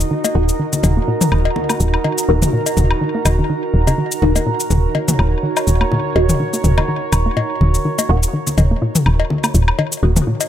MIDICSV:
0, 0, Header, 1, 7, 480
1, 0, Start_track
1, 0, Key_signature, -6, "minor"
1, 0, Tempo, 483871
1, 108, Time_signature, 4, 2, 24, 8
1, 10403, End_track
2, 0, Start_track
2, 0, Title_t, "Ambient pad"
2, 0, Program_c, 0, 92
2, 0, Note_on_c, 0, 66, 78
2, 0, Note_on_c, 0, 70, 71
2, 0, Note_on_c, 0, 75, 89
2, 0, Note_on_c, 0, 82, 71
2, 4493, Note_on_c, 0, 73, 93
2, 4635, Note_off_c, 0, 75, 0
2, 10403, Note_off_c, 0, 66, 0
2, 10403, Note_off_c, 0, 70, 0
2, 10403, Note_off_c, 0, 73, 0
2, 10403, Note_off_c, 0, 82, 0
2, 10403, End_track
3, 0, Start_track
3, 0, Title_t, "Synth drone"
3, 0, Program_c, 1, 95
3, 0, Note_on_c, 1, 63, 85
3, 10403, Note_off_c, 1, 63, 0
3, 10403, End_track
4, 0, Start_track
4, 0, Title_t, "Synth stab"
4, 0, Program_c, 2, 62
4, 349, Note_on_c, 2, 58, 94
4, 349, Note_on_c, 2, 63, 86
4, 349, Note_on_c, 2, 66, 104
4, 424, Note_off_c, 2, 58, 0
4, 424, Note_off_c, 2, 63, 0
4, 424, Note_off_c, 2, 66, 0
4, 2269, Note_on_c, 2, 58, 93
4, 2269, Note_on_c, 2, 63, 87
4, 2269, Note_on_c, 2, 66, 104
4, 2344, Note_off_c, 2, 58, 0
4, 2344, Note_off_c, 2, 63, 0
4, 2344, Note_off_c, 2, 66, 0
4, 4188, Note_on_c, 2, 58, 91
4, 4188, Note_on_c, 2, 63, 87
4, 4188, Note_on_c, 2, 66, 106
4, 4263, Note_off_c, 2, 58, 0
4, 4263, Note_off_c, 2, 63, 0
4, 4263, Note_off_c, 2, 66, 0
4, 6108, Note_on_c, 2, 63, 88
4, 6108, Note_on_c, 2, 66, 103
4, 6109, Note_on_c, 2, 58, 96
4, 6183, Note_off_c, 2, 63, 0
4, 6183, Note_off_c, 2, 66, 0
4, 6184, Note_off_c, 2, 58, 0
4, 8028, Note_on_c, 2, 58, 98
4, 8028, Note_on_c, 2, 63, 90
4, 8028, Note_on_c, 2, 66, 107
4, 8103, Note_off_c, 2, 58, 0
4, 8103, Note_off_c, 2, 63, 0
4, 8103, Note_off_c, 2, 66, 0
4, 9948, Note_on_c, 2, 58, 95
4, 9948, Note_on_c, 2, 66, 102
4, 9949, Note_on_c, 2, 63, 88
4, 10023, Note_off_c, 2, 58, 0
4, 10024, Note_off_c, 2, 63, 0
4, 10024, Note_off_c, 2, 66, 0
4, 10403, End_track
5, 0, Start_track
5, 0, Title_t, "Synth arpeggio sound"
5, 0, Program_c, 3, 84
5, 108, Note_on_c, 3, 51, 80
5, 173, Note_off_c, 3, 51, 0
5, 242, Note_on_c, 3, 58, 74
5, 294, Note_off_c, 3, 58, 0
5, 348, Note_on_c, 3, 46, 96
5, 387, Note_off_c, 3, 46, 0
5, 589, Note_on_c, 3, 51, 78
5, 686, Note_off_c, 3, 51, 0
5, 829, Note_on_c, 3, 51, 71
5, 894, Note_off_c, 3, 51, 0
5, 963, Note_on_c, 3, 58, 73
5, 1014, Note_off_c, 3, 58, 0
5, 1069, Note_on_c, 3, 46, 99
5, 1108, Note_off_c, 3, 46, 0
5, 1309, Note_on_c, 3, 51, 70
5, 1406, Note_off_c, 3, 51, 0
5, 1550, Note_on_c, 3, 51, 75
5, 1614, Note_off_c, 3, 51, 0
5, 1683, Note_on_c, 3, 58, 77
5, 1734, Note_off_c, 3, 58, 0
5, 1789, Note_on_c, 3, 46, 94
5, 1828, Note_off_c, 3, 46, 0
5, 2029, Note_on_c, 3, 51, 81
5, 2126, Note_off_c, 3, 51, 0
5, 2269, Note_on_c, 3, 51, 73
5, 2333, Note_off_c, 3, 51, 0
5, 2403, Note_on_c, 3, 58, 74
5, 2454, Note_off_c, 3, 58, 0
5, 2509, Note_on_c, 3, 46, 95
5, 2547, Note_off_c, 3, 46, 0
5, 2749, Note_on_c, 3, 51, 73
5, 2846, Note_off_c, 3, 51, 0
5, 2988, Note_on_c, 3, 51, 80
5, 3053, Note_off_c, 3, 51, 0
5, 3122, Note_on_c, 3, 58, 75
5, 3174, Note_off_c, 3, 58, 0
5, 3362, Note_on_c, 3, 51, 74
5, 3414, Note_off_c, 3, 51, 0
5, 3468, Note_on_c, 3, 51, 78
5, 3533, Note_off_c, 3, 51, 0
5, 3842, Note_on_c, 3, 49, 96
5, 3894, Note_off_c, 3, 49, 0
5, 3948, Note_on_c, 3, 51, 80
5, 4045, Note_off_c, 3, 51, 0
5, 4188, Note_on_c, 3, 51, 74
5, 4253, Note_off_c, 3, 51, 0
5, 4322, Note_on_c, 3, 58, 75
5, 4374, Note_off_c, 3, 58, 0
5, 4428, Note_on_c, 3, 46, 94
5, 4467, Note_off_c, 3, 46, 0
5, 4668, Note_on_c, 3, 51, 73
5, 4766, Note_off_c, 3, 51, 0
5, 4908, Note_on_c, 3, 51, 79
5, 4973, Note_off_c, 3, 51, 0
5, 5042, Note_on_c, 3, 58, 75
5, 5094, Note_off_c, 3, 58, 0
5, 5148, Note_on_c, 3, 46, 93
5, 5187, Note_off_c, 3, 46, 0
5, 5388, Note_on_c, 3, 51, 77
5, 5485, Note_off_c, 3, 51, 0
5, 5629, Note_on_c, 3, 51, 72
5, 5693, Note_off_c, 3, 51, 0
5, 5762, Note_on_c, 3, 58, 72
5, 5814, Note_off_c, 3, 58, 0
5, 5868, Note_on_c, 3, 46, 98
5, 5907, Note_off_c, 3, 46, 0
5, 6108, Note_on_c, 3, 51, 75
5, 6206, Note_off_c, 3, 51, 0
5, 6348, Note_on_c, 3, 51, 82
5, 6413, Note_off_c, 3, 51, 0
5, 6482, Note_on_c, 3, 58, 75
5, 6534, Note_off_c, 3, 58, 0
5, 6588, Note_on_c, 3, 46, 97
5, 6627, Note_off_c, 3, 46, 0
5, 6828, Note_on_c, 3, 51, 79
5, 6926, Note_off_c, 3, 51, 0
5, 7068, Note_on_c, 3, 51, 73
5, 7133, Note_off_c, 3, 51, 0
5, 7202, Note_on_c, 3, 58, 78
5, 7254, Note_off_c, 3, 58, 0
5, 7308, Note_on_c, 3, 46, 92
5, 7347, Note_off_c, 3, 46, 0
5, 7548, Note_on_c, 3, 51, 72
5, 7645, Note_off_c, 3, 51, 0
5, 7788, Note_on_c, 3, 51, 82
5, 7853, Note_off_c, 3, 51, 0
5, 7922, Note_on_c, 3, 58, 72
5, 7974, Note_off_c, 3, 58, 0
5, 8028, Note_on_c, 3, 46, 96
5, 8067, Note_off_c, 3, 46, 0
5, 8268, Note_on_c, 3, 51, 79
5, 8365, Note_off_c, 3, 51, 0
5, 8507, Note_on_c, 3, 51, 71
5, 8573, Note_off_c, 3, 51, 0
5, 8642, Note_on_c, 3, 58, 77
5, 8694, Note_off_c, 3, 58, 0
5, 8748, Note_on_c, 3, 46, 100
5, 8787, Note_off_c, 3, 46, 0
5, 8988, Note_on_c, 3, 51, 70
5, 9085, Note_off_c, 3, 51, 0
5, 9228, Note_on_c, 3, 51, 78
5, 9293, Note_off_c, 3, 51, 0
5, 9362, Note_on_c, 3, 58, 76
5, 9413, Note_off_c, 3, 58, 0
5, 9468, Note_on_c, 3, 46, 96
5, 9507, Note_off_c, 3, 46, 0
5, 9708, Note_on_c, 3, 51, 83
5, 9806, Note_off_c, 3, 51, 0
5, 9948, Note_on_c, 3, 51, 72
5, 10013, Note_off_c, 3, 51, 0
5, 10082, Note_on_c, 3, 58, 72
5, 10134, Note_off_c, 3, 58, 0
5, 10188, Note_on_c, 3, 46, 97
5, 10227, Note_off_c, 3, 46, 0
5, 10403, End_track
6, 0, Start_track
6, 0, Title_t, "FM bass"
6, 0, Program_c, 4, 39
6, 349, Note_on_c, 4, 27, 94
6, 514, Note_off_c, 4, 27, 0
6, 829, Note_on_c, 4, 27, 97
6, 994, Note_off_c, 4, 27, 0
6, 1309, Note_on_c, 4, 27, 77
6, 1474, Note_off_c, 4, 27, 0
6, 1788, Note_on_c, 4, 27, 93
6, 1954, Note_off_c, 4, 27, 0
6, 2268, Note_on_c, 4, 27, 93
6, 2434, Note_off_c, 4, 27, 0
6, 2748, Note_on_c, 4, 27, 92
6, 2914, Note_off_c, 4, 27, 0
6, 3228, Note_on_c, 4, 27, 87
6, 3394, Note_off_c, 4, 27, 0
6, 3708, Note_on_c, 4, 27, 88
6, 3874, Note_off_c, 4, 27, 0
6, 4188, Note_on_c, 4, 27, 91
6, 4354, Note_off_c, 4, 27, 0
6, 4667, Note_on_c, 4, 27, 95
6, 4834, Note_off_c, 4, 27, 0
6, 5148, Note_on_c, 4, 27, 81
6, 5314, Note_off_c, 4, 27, 0
6, 5628, Note_on_c, 4, 27, 94
6, 5794, Note_off_c, 4, 27, 0
6, 6108, Note_on_c, 4, 27, 98
6, 6274, Note_off_c, 4, 27, 0
6, 6588, Note_on_c, 4, 27, 98
6, 6754, Note_off_c, 4, 27, 0
6, 7068, Note_on_c, 4, 27, 81
6, 7234, Note_off_c, 4, 27, 0
6, 7548, Note_on_c, 4, 27, 91
6, 7714, Note_off_c, 4, 27, 0
6, 8028, Note_on_c, 4, 27, 94
6, 8194, Note_off_c, 4, 27, 0
6, 8508, Note_on_c, 4, 27, 96
6, 8674, Note_off_c, 4, 27, 0
6, 8988, Note_on_c, 4, 27, 77
6, 9154, Note_off_c, 4, 27, 0
6, 9468, Note_on_c, 4, 27, 93
6, 9634, Note_off_c, 4, 27, 0
6, 9948, Note_on_c, 4, 27, 92
6, 10114, Note_off_c, 4, 27, 0
6, 10403, End_track
7, 0, Start_track
7, 0, Title_t, "Drums"
7, 3, Note_on_c, 9, 69, 29
7, 102, Note_off_c, 9, 69, 0
7, 243, Note_on_c, 9, 56, 57
7, 243, Note_on_c, 9, 69, 43
7, 342, Note_off_c, 9, 56, 0
7, 343, Note_off_c, 9, 69, 0
7, 483, Note_on_c, 9, 69, 37
7, 582, Note_off_c, 9, 69, 0
7, 722, Note_on_c, 9, 63, 43
7, 723, Note_on_c, 9, 69, 37
7, 821, Note_off_c, 9, 63, 0
7, 822, Note_off_c, 9, 69, 0
7, 828, Note_on_c, 9, 45, 74
7, 828, Note_on_c, 9, 56, 58
7, 829, Note_on_c, 9, 69, 29
7, 927, Note_off_c, 9, 45, 0
7, 927, Note_off_c, 9, 56, 0
7, 928, Note_off_c, 9, 69, 0
7, 1201, Note_on_c, 9, 45, 88
7, 1203, Note_on_c, 9, 69, 44
7, 1301, Note_off_c, 9, 45, 0
7, 1302, Note_off_c, 9, 69, 0
7, 1308, Note_on_c, 9, 76, 60
7, 1407, Note_off_c, 9, 76, 0
7, 1441, Note_on_c, 9, 56, 57
7, 1541, Note_off_c, 9, 56, 0
7, 1547, Note_on_c, 9, 63, 45
7, 1646, Note_off_c, 9, 63, 0
7, 1681, Note_on_c, 9, 76, 58
7, 1683, Note_on_c, 9, 69, 25
7, 1780, Note_off_c, 9, 76, 0
7, 1782, Note_off_c, 9, 69, 0
7, 1789, Note_on_c, 9, 69, 37
7, 1888, Note_off_c, 9, 69, 0
7, 1921, Note_on_c, 9, 76, 58
7, 2020, Note_off_c, 9, 76, 0
7, 2028, Note_on_c, 9, 56, 57
7, 2127, Note_off_c, 9, 56, 0
7, 2163, Note_on_c, 9, 69, 43
7, 2262, Note_off_c, 9, 69, 0
7, 2402, Note_on_c, 9, 45, 74
7, 2402, Note_on_c, 9, 63, 43
7, 2403, Note_on_c, 9, 69, 37
7, 2501, Note_off_c, 9, 45, 0
7, 2501, Note_off_c, 9, 63, 0
7, 2502, Note_off_c, 9, 69, 0
7, 2642, Note_on_c, 9, 56, 56
7, 2643, Note_on_c, 9, 69, 37
7, 2741, Note_off_c, 9, 56, 0
7, 2742, Note_off_c, 9, 69, 0
7, 2748, Note_on_c, 9, 45, 69
7, 2749, Note_on_c, 9, 69, 28
7, 2847, Note_off_c, 9, 45, 0
7, 2848, Note_off_c, 9, 69, 0
7, 2882, Note_on_c, 9, 76, 57
7, 2982, Note_off_c, 9, 76, 0
7, 3229, Note_on_c, 9, 56, 60
7, 3229, Note_on_c, 9, 63, 42
7, 3229, Note_on_c, 9, 69, 37
7, 3229, Note_on_c, 9, 76, 57
7, 3328, Note_off_c, 9, 56, 0
7, 3328, Note_off_c, 9, 63, 0
7, 3328, Note_off_c, 9, 69, 0
7, 3328, Note_off_c, 9, 76, 0
7, 3842, Note_on_c, 9, 56, 58
7, 3843, Note_on_c, 9, 69, 27
7, 3941, Note_off_c, 9, 56, 0
7, 3942, Note_off_c, 9, 69, 0
7, 4083, Note_on_c, 9, 69, 44
7, 4182, Note_off_c, 9, 69, 0
7, 4188, Note_on_c, 9, 63, 40
7, 4288, Note_off_c, 9, 63, 0
7, 4322, Note_on_c, 9, 56, 58
7, 4323, Note_on_c, 9, 69, 36
7, 4421, Note_off_c, 9, 56, 0
7, 4422, Note_off_c, 9, 69, 0
7, 4563, Note_on_c, 9, 69, 36
7, 4662, Note_off_c, 9, 69, 0
7, 4668, Note_on_c, 9, 45, 68
7, 4669, Note_on_c, 9, 69, 28
7, 4767, Note_off_c, 9, 45, 0
7, 4768, Note_off_c, 9, 69, 0
7, 4908, Note_on_c, 9, 56, 64
7, 5008, Note_off_c, 9, 56, 0
7, 5042, Note_on_c, 9, 45, 84
7, 5042, Note_on_c, 9, 63, 42
7, 5042, Note_on_c, 9, 69, 43
7, 5141, Note_off_c, 9, 45, 0
7, 5141, Note_off_c, 9, 63, 0
7, 5142, Note_off_c, 9, 69, 0
7, 5149, Note_on_c, 9, 76, 59
7, 5248, Note_off_c, 9, 76, 0
7, 5522, Note_on_c, 9, 69, 26
7, 5523, Note_on_c, 9, 56, 61
7, 5523, Note_on_c, 9, 76, 58
7, 5621, Note_off_c, 9, 69, 0
7, 5622, Note_off_c, 9, 56, 0
7, 5622, Note_off_c, 9, 76, 0
7, 5628, Note_on_c, 9, 69, 37
7, 5728, Note_off_c, 9, 69, 0
7, 5762, Note_on_c, 9, 76, 58
7, 5862, Note_off_c, 9, 76, 0
7, 5869, Note_on_c, 9, 63, 40
7, 5968, Note_off_c, 9, 63, 0
7, 6108, Note_on_c, 9, 56, 63
7, 6208, Note_off_c, 9, 56, 0
7, 6242, Note_on_c, 9, 69, 37
7, 6243, Note_on_c, 9, 45, 73
7, 6342, Note_off_c, 9, 45, 0
7, 6342, Note_off_c, 9, 69, 0
7, 6482, Note_on_c, 9, 69, 37
7, 6582, Note_off_c, 9, 69, 0
7, 6588, Note_on_c, 9, 45, 70
7, 6589, Note_on_c, 9, 69, 29
7, 6688, Note_off_c, 9, 45, 0
7, 6688, Note_off_c, 9, 69, 0
7, 6723, Note_on_c, 9, 56, 62
7, 6723, Note_on_c, 9, 63, 41
7, 6723, Note_on_c, 9, 76, 59
7, 6822, Note_off_c, 9, 56, 0
7, 6822, Note_off_c, 9, 63, 0
7, 6822, Note_off_c, 9, 76, 0
7, 7068, Note_on_c, 9, 76, 61
7, 7069, Note_on_c, 9, 69, 39
7, 7167, Note_off_c, 9, 76, 0
7, 7168, Note_off_c, 9, 69, 0
7, 7309, Note_on_c, 9, 56, 65
7, 7408, Note_off_c, 9, 56, 0
7, 7549, Note_on_c, 9, 63, 43
7, 7648, Note_off_c, 9, 63, 0
7, 7683, Note_on_c, 9, 69, 28
7, 7782, Note_off_c, 9, 69, 0
7, 7922, Note_on_c, 9, 56, 65
7, 7923, Note_on_c, 9, 69, 47
7, 8021, Note_off_c, 9, 56, 0
7, 8022, Note_off_c, 9, 69, 0
7, 8163, Note_on_c, 9, 69, 41
7, 8262, Note_off_c, 9, 69, 0
7, 8402, Note_on_c, 9, 63, 39
7, 8403, Note_on_c, 9, 69, 42
7, 8501, Note_off_c, 9, 63, 0
7, 8502, Note_off_c, 9, 69, 0
7, 8508, Note_on_c, 9, 45, 70
7, 8508, Note_on_c, 9, 56, 64
7, 8509, Note_on_c, 9, 69, 30
7, 8607, Note_off_c, 9, 45, 0
7, 8607, Note_off_c, 9, 56, 0
7, 8608, Note_off_c, 9, 69, 0
7, 8882, Note_on_c, 9, 45, 84
7, 8883, Note_on_c, 9, 69, 47
7, 8981, Note_off_c, 9, 45, 0
7, 8982, Note_off_c, 9, 69, 0
7, 8988, Note_on_c, 9, 76, 64
7, 9087, Note_off_c, 9, 76, 0
7, 9122, Note_on_c, 9, 56, 65
7, 9221, Note_off_c, 9, 56, 0
7, 9229, Note_on_c, 9, 63, 42
7, 9328, Note_off_c, 9, 63, 0
7, 9362, Note_on_c, 9, 76, 61
7, 9363, Note_on_c, 9, 69, 28
7, 9462, Note_off_c, 9, 69, 0
7, 9462, Note_off_c, 9, 76, 0
7, 9469, Note_on_c, 9, 69, 39
7, 9568, Note_off_c, 9, 69, 0
7, 9602, Note_on_c, 9, 76, 63
7, 9701, Note_off_c, 9, 76, 0
7, 9708, Note_on_c, 9, 56, 62
7, 9807, Note_off_c, 9, 56, 0
7, 9843, Note_on_c, 9, 69, 48
7, 9942, Note_off_c, 9, 69, 0
7, 10082, Note_on_c, 9, 69, 40
7, 10083, Note_on_c, 9, 45, 77
7, 10083, Note_on_c, 9, 63, 39
7, 10182, Note_off_c, 9, 45, 0
7, 10182, Note_off_c, 9, 63, 0
7, 10182, Note_off_c, 9, 69, 0
7, 10323, Note_on_c, 9, 56, 61
7, 10323, Note_on_c, 9, 69, 40
7, 10403, Note_off_c, 9, 56, 0
7, 10403, Note_off_c, 9, 69, 0
7, 10403, End_track
0, 0, End_of_file